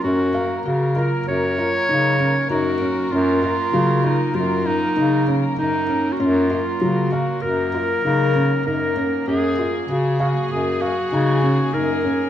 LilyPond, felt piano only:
\new Staff \with { instrumentName = "Felt piano" } { \time 5/4 \key fis \major \tempo 4 = 97 cis'8 eis''8 fis'8 eis'8 fis'8 eis'8 dis'8 cis'8 dis'8 cis'8 | cis'8 eis'8 fis8 eis'8 fis8 eis'8 dis'8 cis'8 dis'8 cis'8 | cis'8 eis'8 fis8 eis''8 fis'8 eis'8 dis'8 cis'8 dis'8 cis'8 | cis'8 eis'8 fis'8 eis''8 fis'8 eis''8 dis'8 cis'8 dis'8 cis'8 | }